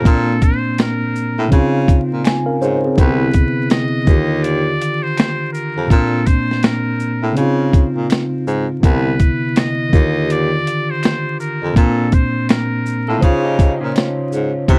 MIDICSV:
0, 0, Header, 1, 6, 480
1, 0, Start_track
1, 0, Tempo, 731707
1, 31, Time_signature, 4, 2, 24, 8
1, 9702, End_track
2, 0, Start_track
2, 0, Title_t, "Muted trumpet"
2, 0, Program_c, 0, 59
2, 55, Note_on_c, 0, 69, 94
2, 286, Note_on_c, 0, 72, 96
2, 296, Note_off_c, 0, 69, 0
2, 519, Note_off_c, 0, 72, 0
2, 533, Note_on_c, 0, 70, 80
2, 976, Note_off_c, 0, 70, 0
2, 1960, Note_on_c, 0, 71, 102
2, 2409, Note_off_c, 0, 71, 0
2, 2432, Note_on_c, 0, 75, 110
2, 2909, Note_on_c, 0, 74, 111
2, 2919, Note_off_c, 0, 75, 0
2, 3298, Note_on_c, 0, 72, 107
2, 3308, Note_off_c, 0, 74, 0
2, 3625, Note_off_c, 0, 72, 0
2, 3629, Note_on_c, 0, 70, 80
2, 3873, Note_on_c, 0, 69, 91
2, 3883, Note_off_c, 0, 70, 0
2, 4109, Note_on_c, 0, 72, 102
2, 4119, Note_off_c, 0, 69, 0
2, 4357, Note_on_c, 0, 70, 83
2, 4367, Note_off_c, 0, 72, 0
2, 4834, Note_off_c, 0, 70, 0
2, 5813, Note_on_c, 0, 71, 100
2, 6288, Note_on_c, 0, 75, 110
2, 6297, Note_off_c, 0, 71, 0
2, 6767, Note_on_c, 0, 74, 121
2, 6777, Note_off_c, 0, 75, 0
2, 7153, Note_on_c, 0, 72, 100
2, 7163, Note_off_c, 0, 74, 0
2, 7475, Note_off_c, 0, 72, 0
2, 7479, Note_on_c, 0, 70, 81
2, 7699, Note_off_c, 0, 70, 0
2, 7723, Note_on_c, 0, 69, 85
2, 7959, Note_on_c, 0, 72, 93
2, 7969, Note_off_c, 0, 69, 0
2, 8195, Note_off_c, 0, 72, 0
2, 8201, Note_on_c, 0, 70, 81
2, 8650, Note_off_c, 0, 70, 0
2, 9651, Note_on_c, 0, 71, 104
2, 9702, Note_off_c, 0, 71, 0
2, 9702, End_track
3, 0, Start_track
3, 0, Title_t, "Clean electric guitar"
3, 0, Program_c, 1, 27
3, 8583, Note_on_c, 1, 69, 80
3, 8588, Note_on_c, 1, 65, 73
3, 8670, Note_off_c, 1, 69, 0
3, 8673, Note_off_c, 1, 65, 0
3, 8674, Note_on_c, 1, 68, 86
3, 8681, Note_on_c, 1, 65, 65
3, 8811, Note_off_c, 1, 68, 0
3, 8815, Note_off_c, 1, 65, 0
3, 8816, Note_on_c, 1, 67, 87
3, 8820, Note_on_c, 1, 63, 84
3, 9045, Note_off_c, 1, 67, 0
3, 9047, Note_off_c, 1, 63, 0
3, 9057, Note_on_c, 1, 61, 66
3, 9058, Note_on_c, 1, 65, 61
3, 9605, Note_off_c, 1, 65, 0
3, 9606, Note_off_c, 1, 61, 0
3, 9702, End_track
4, 0, Start_track
4, 0, Title_t, "Tine electric piano"
4, 0, Program_c, 2, 4
4, 0, Control_c, 2, 64, 127
4, 7, Note_on_c, 2, 46, 65
4, 23, Note_on_c, 2, 58, 70
4, 37, Note_on_c, 2, 60, 63
4, 41, Control_c, 2, 64, 0
4, 55, Note_on_c, 2, 62, 81
4, 146, Control_c, 2, 64, 127
4, 960, Note_off_c, 2, 46, 0
4, 968, Note_off_c, 2, 58, 0
4, 972, Note_on_c, 2, 49, 77
4, 975, Note_off_c, 2, 60, 0
4, 984, Note_off_c, 2, 62, 0
4, 987, Note_on_c, 2, 60, 66
4, 1000, Control_c, 2, 64, 0
4, 1003, Note_on_c, 2, 63, 67
4, 1020, Note_on_c, 2, 65, 81
4, 1096, Control_c, 2, 64, 127
4, 1460, Note_off_c, 2, 60, 0
4, 1468, Note_off_c, 2, 63, 0
4, 1475, Note_on_c, 2, 80, 72
4, 1477, Note_off_c, 2, 65, 0
4, 1609, Note_off_c, 2, 80, 0
4, 1614, Note_on_c, 2, 70, 70
4, 1614, Note_on_c, 2, 77, 65
4, 1617, Note_on_c, 2, 61, 52
4, 1703, Note_off_c, 2, 77, 0
4, 1705, Note_off_c, 2, 70, 0
4, 1707, Note_off_c, 2, 61, 0
4, 1715, Note_on_c, 2, 72, 76
4, 1716, Note_on_c, 2, 73, 73
4, 1720, Note_on_c, 2, 63, 68
4, 1852, Note_off_c, 2, 72, 0
4, 1855, Note_off_c, 2, 63, 0
4, 1867, Note_on_c, 2, 68, 63
4, 1869, Note_on_c, 2, 60, 62
4, 1922, Note_off_c, 2, 49, 0
4, 1937, Note_off_c, 2, 73, 0
4, 1948, Note_on_c, 2, 48, 73
4, 1957, Note_on_c, 2, 59, 71
4, 1961, Control_c, 2, 64, 0
4, 1966, Note_on_c, 2, 50, 67
4, 1973, Note_on_c, 2, 63, 58
4, 2014, Note_off_c, 2, 63, 0
4, 2014, Note_on_c, 2, 64, 79
4, 2090, Control_c, 2, 64, 127
4, 2091, Note_off_c, 2, 68, 0
4, 2092, Note_off_c, 2, 60, 0
4, 2656, Note_on_c, 2, 51, 69
4, 2664, Note_off_c, 2, 50, 0
4, 2670, Note_off_c, 2, 48, 0
4, 2672, Note_on_c, 2, 50, 63
4, 2675, Note_off_c, 2, 59, 0
4, 2681, Control_c, 2, 64, 0
4, 2686, Note_on_c, 2, 65, 66
4, 2703, Note_off_c, 2, 64, 0
4, 2706, Note_on_c, 2, 67, 74
4, 2776, Control_c, 2, 64, 127
4, 3840, Note_off_c, 2, 51, 0
4, 3848, Note_off_c, 2, 50, 0
4, 3851, Note_on_c, 2, 46, 73
4, 3855, Note_off_c, 2, 65, 0
4, 3865, Note_off_c, 2, 67, 0
4, 3868, Note_on_c, 2, 58, 71
4, 3881, Control_c, 2, 64, 0
4, 3882, Note_on_c, 2, 60, 67
4, 3901, Note_on_c, 2, 62, 86
4, 4005, Control_c, 2, 64, 127
4, 4802, Note_off_c, 2, 46, 0
4, 4806, Note_on_c, 2, 49, 71
4, 4811, Note_off_c, 2, 58, 0
4, 4815, Note_off_c, 2, 60, 0
4, 4823, Note_on_c, 2, 60, 62
4, 4828, Note_off_c, 2, 62, 0
4, 4841, Control_c, 2, 64, 0
4, 4841, Note_on_c, 2, 63, 62
4, 4858, Note_on_c, 2, 65, 71
4, 4956, Control_c, 2, 64, 127
4, 5759, Note_off_c, 2, 49, 0
4, 5768, Note_off_c, 2, 60, 0
4, 5775, Note_on_c, 2, 48, 65
4, 5777, Note_off_c, 2, 63, 0
4, 5786, Note_off_c, 2, 65, 0
4, 5786, Note_on_c, 2, 59, 60
4, 5796, Note_on_c, 2, 50, 61
4, 5800, Control_c, 2, 64, 0
4, 5800, Note_on_c, 2, 64, 82
4, 5906, Control_c, 2, 64, 127
4, 6488, Note_on_c, 2, 51, 67
4, 6498, Note_off_c, 2, 50, 0
4, 6503, Note_off_c, 2, 48, 0
4, 6505, Note_on_c, 2, 50, 68
4, 6509, Note_off_c, 2, 59, 0
4, 6516, Note_off_c, 2, 64, 0
4, 6519, Control_c, 2, 64, 0
4, 6522, Note_on_c, 2, 65, 62
4, 6537, Note_on_c, 2, 67, 67
4, 6623, Control_c, 2, 64, 127
4, 7676, Note_off_c, 2, 51, 0
4, 7685, Note_off_c, 2, 50, 0
4, 7693, Note_off_c, 2, 65, 0
4, 7695, Note_on_c, 2, 46, 73
4, 7701, Note_off_c, 2, 67, 0
4, 7709, Note_on_c, 2, 58, 59
4, 7719, Control_c, 2, 64, 0
4, 7728, Note_on_c, 2, 60, 68
4, 7745, Note_on_c, 2, 62, 73
4, 7839, Control_c, 2, 64, 127
4, 8644, Note_off_c, 2, 46, 0
4, 8651, Note_off_c, 2, 58, 0
4, 8651, Note_on_c, 2, 49, 67
4, 8661, Note_off_c, 2, 60, 0
4, 8666, Note_on_c, 2, 72, 63
4, 8670, Note_off_c, 2, 62, 0
4, 8679, Control_c, 2, 64, 0
4, 8683, Note_on_c, 2, 63, 58
4, 8701, Note_on_c, 2, 65, 74
4, 8778, Control_c, 2, 64, 127
4, 9602, Note_off_c, 2, 49, 0
4, 9610, Note_off_c, 2, 72, 0
4, 9618, Note_off_c, 2, 63, 0
4, 9627, Note_off_c, 2, 65, 0
4, 9629, Note_on_c, 2, 48, 63
4, 9637, Note_on_c, 2, 59, 63
4, 9641, Control_c, 2, 64, 0
4, 9643, Note_on_c, 2, 50, 68
4, 9654, Note_on_c, 2, 64, 80
4, 9702, Note_off_c, 2, 48, 0
4, 9702, Note_off_c, 2, 50, 0
4, 9702, Note_off_c, 2, 59, 0
4, 9702, Note_off_c, 2, 64, 0
4, 9702, End_track
5, 0, Start_track
5, 0, Title_t, "Baritone saxophone"
5, 0, Program_c, 3, 67
5, 40, Note_on_c, 3, 46, 113
5, 251, Note_off_c, 3, 46, 0
5, 908, Note_on_c, 3, 45, 90
5, 988, Note_off_c, 3, 45, 0
5, 1000, Note_on_c, 3, 49, 107
5, 1341, Note_off_c, 3, 49, 0
5, 1390, Note_on_c, 3, 46, 83
5, 1469, Note_off_c, 3, 46, 0
5, 1720, Note_on_c, 3, 44, 86
5, 1847, Note_off_c, 3, 44, 0
5, 1957, Note_on_c, 3, 36, 114
5, 2169, Note_off_c, 3, 36, 0
5, 2673, Note_on_c, 3, 39, 104
5, 3101, Note_off_c, 3, 39, 0
5, 3782, Note_on_c, 3, 41, 86
5, 3864, Note_off_c, 3, 41, 0
5, 3877, Note_on_c, 3, 46, 113
5, 4089, Note_off_c, 3, 46, 0
5, 4742, Note_on_c, 3, 45, 86
5, 4824, Note_off_c, 3, 45, 0
5, 4834, Note_on_c, 3, 49, 87
5, 5178, Note_off_c, 3, 49, 0
5, 5222, Note_on_c, 3, 46, 74
5, 5304, Note_off_c, 3, 46, 0
5, 5557, Note_on_c, 3, 44, 87
5, 5685, Note_off_c, 3, 44, 0
5, 5797, Note_on_c, 3, 36, 110
5, 6009, Note_off_c, 3, 36, 0
5, 6517, Note_on_c, 3, 39, 110
5, 6943, Note_off_c, 3, 39, 0
5, 7625, Note_on_c, 3, 41, 82
5, 7706, Note_off_c, 3, 41, 0
5, 7720, Note_on_c, 3, 46, 100
5, 7930, Note_off_c, 3, 46, 0
5, 8585, Note_on_c, 3, 45, 85
5, 8666, Note_off_c, 3, 45, 0
5, 8679, Note_on_c, 3, 49, 100
5, 9020, Note_off_c, 3, 49, 0
5, 9068, Note_on_c, 3, 46, 79
5, 9148, Note_off_c, 3, 46, 0
5, 9402, Note_on_c, 3, 44, 83
5, 9528, Note_off_c, 3, 44, 0
5, 9637, Note_on_c, 3, 48, 108
5, 9702, Note_off_c, 3, 48, 0
5, 9702, End_track
6, 0, Start_track
6, 0, Title_t, "Drums"
6, 35, Note_on_c, 9, 36, 125
6, 40, Note_on_c, 9, 42, 86
6, 101, Note_off_c, 9, 36, 0
6, 106, Note_off_c, 9, 42, 0
6, 274, Note_on_c, 9, 42, 45
6, 274, Note_on_c, 9, 82, 50
6, 275, Note_on_c, 9, 36, 91
6, 340, Note_off_c, 9, 42, 0
6, 340, Note_off_c, 9, 82, 0
6, 341, Note_off_c, 9, 36, 0
6, 514, Note_on_c, 9, 42, 64
6, 517, Note_on_c, 9, 26, 80
6, 523, Note_on_c, 9, 38, 103
6, 580, Note_off_c, 9, 42, 0
6, 583, Note_off_c, 9, 26, 0
6, 588, Note_off_c, 9, 38, 0
6, 758, Note_on_c, 9, 82, 46
6, 823, Note_off_c, 9, 82, 0
6, 996, Note_on_c, 9, 36, 84
6, 997, Note_on_c, 9, 42, 58
6, 1061, Note_off_c, 9, 36, 0
6, 1062, Note_off_c, 9, 42, 0
6, 1235, Note_on_c, 9, 36, 112
6, 1240, Note_on_c, 9, 42, 54
6, 1240, Note_on_c, 9, 82, 51
6, 1300, Note_off_c, 9, 36, 0
6, 1306, Note_off_c, 9, 42, 0
6, 1306, Note_off_c, 9, 82, 0
6, 1473, Note_on_c, 9, 26, 62
6, 1477, Note_on_c, 9, 42, 68
6, 1490, Note_on_c, 9, 38, 119
6, 1539, Note_off_c, 9, 26, 0
6, 1543, Note_off_c, 9, 42, 0
6, 1555, Note_off_c, 9, 38, 0
6, 1717, Note_on_c, 9, 82, 42
6, 1783, Note_off_c, 9, 82, 0
6, 1953, Note_on_c, 9, 36, 120
6, 1956, Note_on_c, 9, 42, 75
6, 2019, Note_off_c, 9, 36, 0
6, 2022, Note_off_c, 9, 42, 0
6, 2188, Note_on_c, 9, 42, 50
6, 2188, Note_on_c, 9, 82, 51
6, 2193, Note_on_c, 9, 36, 91
6, 2253, Note_off_c, 9, 42, 0
6, 2253, Note_off_c, 9, 82, 0
6, 2259, Note_off_c, 9, 36, 0
6, 2428, Note_on_c, 9, 42, 62
6, 2435, Note_on_c, 9, 26, 71
6, 2437, Note_on_c, 9, 38, 111
6, 2493, Note_off_c, 9, 42, 0
6, 2500, Note_off_c, 9, 26, 0
6, 2502, Note_off_c, 9, 38, 0
6, 2668, Note_on_c, 9, 82, 45
6, 2671, Note_on_c, 9, 36, 118
6, 2734, Note_off_c, 9, 82, 0
6, 2737, Note_off_c, 9, 36, 0
6, 2914, Note_on_c, 9, 42, 62
6, 2980, Note_off_c, 9, 42, 0
6, 3158, Note_on_c, 9, 42, 51
6, 3158, Note_on_c, 9, 82, 48
6, 3224, Note_off_c, 9, 42, 0
6, 3224, Note_off_c, 9, 82, 0
6, 3395, Note_on_c, 9, 26, 73
6, 3396, Note_on_c, 9, 42, 67
6, 3409, Note_on_c, 9, 38, 122
6, 3460, Note_off_c, 9, 26, 0
6, 3462, Note_off_c, 9, 42, 0
6, 3474, Note_off_c, 9, 38, 0
6, 3637, Note_on_c, 9, 82, 46
6, 3703, Note_off_c, 9, 82, 0
6, 3873, Note_on_c, 9, 36, 113
6, 3879, Note_on_c, 9, 42, 71
6, 3939, Note_off_c, 9, 36, 0
6, 3945, Note_off_c, 9, 42, 0
6, 4110, Note_on_c, 9, 42, 46
6, 4110, Note_on_c, 9, 82, 49
6, 4112, Note_on_c, 9, 36, 89
6, 4176, Note_off_c, 9, 42, 0
6, 4176, Note_off_c, 9, 82, 0
6, 4178, Note_off_c, 9, 36, 0
6, 4272, Note_on_c, 9, 38, 41
6, 4338, Note_off_c, 9, 38, 0
6, 4347, Note_on_c, 9, 42, 62
6, 4356, Note_on_c, 9, 38, 112
6, 4357, Note_on_c, 9, 26, 74
6, 4413, Note_off_c, 9, 42, 0
6, 4422, Note_off_c, 9, 38, 0
6, 4423, Note_off_c, 9, 26, 0
6, 4590, Note_on_c, 9, 82, 47
6, 4656, Note_off_c, 9, 82, 0
6, 4833, Note_on_c, 9, 42, 55
6, 4898, Note_off_c, 9, 42, 0
6, 5074, Note_on_c, 9, 36, 113
6, 5079, Note_on_c, 9, 42, 52
6, 5079, Note_on_c, 9, 82, 44
6, 5139, Note_off_c, 9, 36, 0
6, 5144, Note_off_c, 9, 42, 0
6, 5144, Note_off_c, 9, 82, 0
6, 5313, Note_on_c, 9, 26, 64
6, 5316, Note_on_c, 9, 42, 70
6, 5329, Note_on_c, 9, 38, 119
6, 5379, Note_off_c, 9, 26, 0
6, 5382, Note_off_c, 9, 42, 0
6, 5394, Note_off_c, 9, 38, 0
6, 5557, Note_on_c, 9, 82, 38
6, 5623, Note_off_c, 9, 82, 0
6, 5794, Note_on_c, 9, 36, 110
6, 5799, Note_on_c, 9, 42, 80
6, 5859, Note_off_c, 9, 36, 0
6, 5865, Note_off_c, 9, 42, 0
6, 6033, Note_on_c, 9, 42, 48
6, 6033, Note_on_c, 9, 82, 52
6, 6034, Note_on_c, 9, 36, 89
6, 6098, Note_off_c, 9, 42, 0
6, 6098, Note_off_c, 9, 82, 0
6, 6100, Note_off_c, 9, 36, 0
6, 6272, Note_on_c, 9, 42, 71
6, 6277, Note_on_c, 9, 26, 71
6, 6281, Note_on_c, 9, 38, 95
6, 6337, Note_off_c, 9, 42, 0
6, 6342, Note_off_c, 9, 26, 0
6, 6346, Note_off_c, 9, 38, 0
6, 6514, Note_on_c, 9, 36, 115
6, 6516, Note_on_c, 9, 82, 45
6, 6580, Note_off_c, 9, 36, 0
6, 6581, Note_off_c, 9, 82, 0
6, 6757, Note_on_c, 9, 42, 66
6, 6823, Note_off_c, 9, 42, 0
6, 7001, Note_on_c, 9, 42, 51
6, 7001, Note_on_c, 9, 82, 54
6, 7066, Note_off_c, 9, 42, 0
6, 7066, Note_off_c, 9, 82, 0
6, 7235, Note_on_c, 9, 26, 62
6, 7239, Note_on_c, 9, 42, 74
6, 7251, Note_on_c, 9, 38, 107
6, 7301, Note_off_c, 9, 26, 0
6, 7305, Note_off_c, 9, 42, 0
6, 7317, Note_off_c, 9, 38, 0
6, 7479, Note_on_c, 9, 82, 44
6, 7545, Note_off_c, 9, 82, 0
6, 7716, Note_on_c, 9, 36, 127
6, 7720, Note_on_c, 9, 42, 76
6, 7781, Note_off_c, 9, 36, 0
6, 7786, Note_off_c, 9, 42, 0
6, 7951, Note_on_c, 9, 42, 50
6, 7951, Note_on_c, 9, 82, 48
6, 7955, Note_on_c, 9, 36, 98
6, 8017, Note_off_c, 9, 42, 0
6, 8017, Note_off_c, 9, 82, 0
6, 8020, Note_off_c, 9, 36, 0
6, 8194, Note_on_c, 9, 42, 65
6, 8195, Note_on_c, 9, 26, 78
6, 8203, Note_on_c, 9, 38, 109
6, 8260, Note_off_c, 9, 42, 0
6, 8261, Note_off_c, 9, 26, 0
6, 8268, Note_off_c, 9, 38, 0
6, 8437, Note_on_c, 9, 82, 50
6, 8503, Note_off_c, 9, 82, 0
6, 8675, Note_on_c, 9, 42, 61
6, 8676, Note_on_c, 9, 36, 84
6, 8741, Note_off_c, 9, 36, 0
6, 8741, Note_off_c, 9, 42, 0
6, 8914, Note_on_c, 9, 36, 106
6, 8919, Note_on_c, 9, 42, 46
6, 8919, Note_on_c, 9, 82, 46
6, 8980, Note_off_c, 9, 36, 0
6, 8984, Note_off_c, 9, 42, 0
6, 8984, Note_off_c, 9, 82, 0
6, 9156, Note_on_c, 9, 26, 65
6, 9157, Note_on_c, 9, 42, 74
6, 9169, Note_on_c, 9, 38, 117
6, 9221, Note_off_c, 9, 26, 0
6, 9222, Note_off_c, 9, 42, 0
6, 9235, Note_off_c, 9, 38, 0
6, 9396, Note_on_c, 9, 82, 44
6, 9461, Note_off_c, 9, 82, 0
6, 9633, Note_on_c, 9, 36, 112
6, 9635, Note_on_c, 9, 42, 85
6, 9698, Note_off_c, 9, 36, 0
6, 9701, Note_off_c, 9, 42, 0
6, 9702, End_track
0, 0, End_of_file